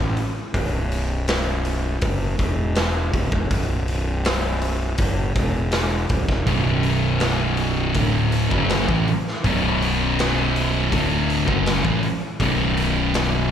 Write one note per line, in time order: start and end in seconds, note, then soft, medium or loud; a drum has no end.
0.00 0.16 A1 medium
0.17 open hi-hat soft
0.54 1.99 B0 medium
0.54 kick loud
0.54 open hi-hat medium
0.92 open hi-hat medium
1.28 snare loud
1.28 open hi-hat medium
1.65 open hi-hat medium
2.01 2.37 F#1 loud
2.01 kick loud
2.01 open hi-hat medium
2.39 3.10 E1 medium
2.39 kick loud
2.39 open hi-hat medium
2.75 snare loud
2.75 open hi-hat medium
3.14 3.31 D1 loud
3.14 kick loud
3.14 open hi-hat soft
3.32 3.49 E1 loud
3.32 kick loud
3.51 4.95 B0 medium
3.51 kick loud
3.51 open hi-hat medium
3.88 open hi-hat medium
4.25 snare loud
4.25 open hi-hat medium
4.62 open hi-hat medium
4.98 5.33 F#1 medium
4.98 kick loud
4.98 open hi-hat medium
5.35 6.06 E1 medium
5.35 kick loud
5.35 open hi-hat medium
5.72 snare loud
5.72 open hi-hat medium
6.09 6.28 D1 medium
6.09 kick loud
6.09 open hi-hat medium
6.29 6.46 E1 medium
6.29 kick loud
6.29 snare soft
6.47 7.92 B0 medium
6.47 7.94 B1 loud
6.47 7.95 F#2 loud
6.47 7.95 B2 loud
6.47 kick medium
6.47 open hi-hat medium
6.83 open hi-hat medium
7.20 snare loud
7.20 open hi-hat medium
7.57 open hi-hat medium
7.94 8.47 D1 medium
7.94 8.50 D2 medium
7.94 8.50 A2 medium
7.94 8.51 D3 medium
7.94 kick loud
7.94 open hi-hat medium
8.32 open hi-hat medium
8.51 8.86 F#1 loud
8.51 8.87 F#2 medium
8.51 8.88 C#3 medium
8.51 8.88 F#3 loud
8.51 kick loud
8.70 snare loud
8.70 open hi-hat medium
8.88 9.06 A1 medium
8.88 9.06 A2 loud
8.88 9.06 E3 medium
8.88 kick loud
9.08 open hi-hat soft
9.28 snare soft
9.44 10.88 B0 medium
9.44 10.91 B1 medium
9.44 10.91 F#2 loud
9.44 10.92 B2 loud
9.44 kick loud
9.44 open hi-hat medium
9.82 open hi-hat medium
10.19 snare loud
10.19 open hi-hat medium
10.56 open hi-hat medium
10.92 11.44 D1 loud
10.92 11.46 D2 medium
10.92 11.47 A2 medium
10.92 11.47 D3 loud
10.92 kick loud
10.92 open hi-hat medium
11.30 open hi-hat medium
11.46 11.82 F#1 loud
11.46 11.83 F#2 medium
11.46 11.83 C#3 medium
11.46 11.84 F#3 medium
11.46 kick loud
11.66 snare loud
11.66 open hi-hat medium
11.84 12.02 A1 medium
11.84 12.02 A2 medium
11.84 12.02 E3 loud
11.84 kick loud
12.03 open hi-hat medium
12.40 13.51 B0 medium
12.40 13.51 B1 medium
12.40 13.51 F#2 loud
12.40 13.51 B2 loud
12.40 kick loud
12.40 open hi-hat medium
12.77 open hi-hat medium
13.14 snare loud
13.14 open hi-hat medium